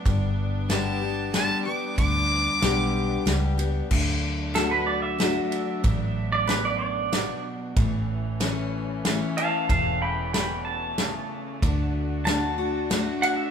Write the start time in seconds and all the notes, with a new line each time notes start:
Already playing: B3 D4
0.05 G1 G2 G3, kick, ride
0.69 D3 G3 B3 G4 A5, snare, ride
1.02 B3 G4
1.33 D3 G3 B3 G4 A5, snare, ride
1.65 B3 G4 D6
1.97 D2 D3 D6, kick, ride
2.61 B1 D3 G3 B3 G4, snare, ride
3.26 C#2 G3 B3 G4, snare, ride
3.58 B3 G4, ride
3.91 D2 D3 F#3 A3 D4, kick, crash
4.54 D3 A3 D4 F#4 A4, snare, ride
4.71 B4
4.87 D5
5.02 E5
5.19 D3 A3 D4 F#4, snare, ride
5.52 ride
5.84 A1 A2 B3, kick, ride
6.32 D5
6.47 F#2 B4, snare, ride
6.65 D5
6.79 D5
7.12 B2, snare, ride
7.76 A1 A2 E3 A3 C#4, kick, ride
8.40 E3 A3 C#4 E4, snare, ride
9.05 E3 A3 C#4 E4, snare, ride
9.37 C#4 E4 F5 A5, ride
9.69 E1 E2 F5 A5, kick, ride
10.02 G5 B5
10.33 B2 G5 B5, snare, ride
10.65 A5
10.98 C#3, snare, ride
11.62 D2 D3 D4 F#4, kick, ride
12.25 D3 A3 D4 F#4 A5, snare, ride
12.58 D4 F#4
12.90 D3 A3 D4 F#4, snare, ride
13.22 F#5, ride
13.37 E5